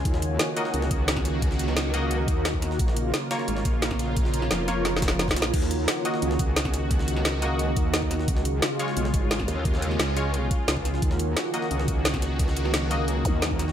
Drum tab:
CC |------------------------------------------------|------------------------------------------------|------------------------------------------------|------------------------------------------------|
HH |x-----x-----x-----x-----x-----x-----x--x--x-----|x-----x-----x-----x-----x-----x-----x-----x-----|x-----x-----x-----x-----x-----x-----x--x--x-----|x-----x-----x-----x-----x-----x-----x-----x-----|
SD |---o--------o--------o-----o--------o--o--o-----|---o-----o--o-----------------------o-----o--o--|---o--------o-----o--o-----o--------o--o--o-----|---o-----o--o-----o-----o---o-o-o---o--oo-o-o---|
BD |o-----------------------------o--------o--------|o-----------------------------o--------o--------|o-----------------------------o--------o--------|o-----------------------------o--------o--------|

CC |x-----------------------------------------------|------------------------------------------------|------------------------------------------------|------------------------------------------------|
HH |x-----x-----x-----x-----x-----x-----x--x--x-----|x-----x-----x-----x-----x-----x-----x-----x-----|x-----x-----x-----x-----x-----x-----x--x--x-----|x-----x-----x-----x-----x-----x-----x-----x-----|
SD |---o--------o--------o-----o--------o--o--o-----|---o-----o--o-----------------------o-----o--o--|---o--------o--------o-----o--------o--o--o-----|---o-----o--o-----------------------o-----o--o--|
BD |o-----------------------------o--------o--------|o-----------------------------o--------o--------|o-----------------------------o--------o--------|o-----------------------------o--------o--------|

CC |------------------------------------------------|------------------------------------------------|
HH |x-----x-----x-----x-----x-----x-----x--x--x-----|x-----x-----x-----x-----x-----x-----x-----x-----|
SD |---o--------o--------o-----o--------o--o--o-----|---o-----o--o-----------------------o-----o--o--|
BD |o-----------------------------o--------o--------|o-----------------------------o--------o--------|